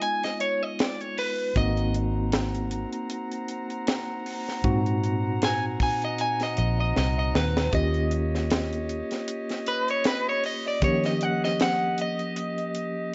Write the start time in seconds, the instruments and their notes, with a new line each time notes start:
Already playing: tine electric piano G#3 B3 D#4 F4
0.02 clean electric guitar G#5, closed hi-hat
0.24 clean electric guitar D#5, snare, closed hi-hat
0.40 clean electric guitar C#5, closed hi-hat
0.63 clean electric guitar D#5
0.79 clean electric guitar D5, snare, closed hi-hat
1.01 clean electric guitar C#5, closed hi-hat
1.18 clean electric guitar B4, open hi-hat
1.56 fingered electric bass G#1, tine electric piano A#3 C4 D#4 F#4, horn section C4 F#5 A#5, clean electric guitar D#5, kick, closed hi-hat
1.77 closed hi-hat
1.94 closed hi-hat
2.32 snare, closed hi-hat
2.55 closed hi-hat
2.71 closed hi-hat
2.93 closed hi-hat
3.10 closed hi-hat
3.32 closed hi-hat
3.48 closed hi-hat
3.70 closed hi-hat
3.87 snare, closed hi-hat
4.26 open hi-hat
4.49 snare
4.64 fingered electric bass G#2, tine electric piano A#2 C4 D#4 F#4, kick, closed hi-hat
4.86 closed hi-hat
5.04 closed hi-hat
5.42 clean electric guitar G#5, snare, closed hi-hat
5.80 clean electric guitar G#5, kick, open hi-hat
6.02 clean electric guitar D#5, closed hi-hat
6.18 clean electric guitar G#5, closed hi-hat
6.40 clean electric guitar D#5, snare, closed hi-hat
6.57 fingered electric bass A#1, clean electric guitar D#5, closed hi-hat
6.80 clean electric guitar D#5
6.96 fingered electric bass C2, clean electric guitar D#5, snare
7.19 clean electric guitar D#5
7.35 fingered electric bass D#2, clean electric guitar B4, snare
7.57 snare
7.71 fingered electric bass D#2, tine electric piano A#3 C#4 F4 G4, horn section G4 C#5 D#5, clean electric guitar D#5, kick, closed hi-hat
7.94 closed hi-hat
8.11 closed hi-hat
8.35 snare
8.50 snare, closed hi-hat
8.73 closed hi-hat
8.89 closed hi-hat
9.11 snare, closed hi-hat
9.28 closed hi-hat
9.49 snare, closed hi-hat
9.66 clean electric guitar B4, closed hi-hat
9.88 clean electric guitar C#5, closed hi-hat
10.04 clean electric guitar B4, snare, closed hi-hat
10.29 clean electric guitar C#5
10.44 clean electric guitar D#5, open hi-hat
10.68 clean electric guitar D5
10.82 fingered electric bass D#3, tine electric piano F3 A#3 C#4 G4, clean electric guitar C#5, kick, closed hi-hat
11.04 clean electric guitar D#5, snare, closed hi-hat
11.21 clean electric guitar F#5, closed hi-hat
11.44 clean electric guitar D#5, snare
11.60 clean electric guitar F#5, snare, closed hi-hat
11.98 clean electric guitar D#5, closed hi-hat
12.19 closed hi-hat
12.36 closed hi-hat
12.58 closed hi-hat
12.75 closed hi-hat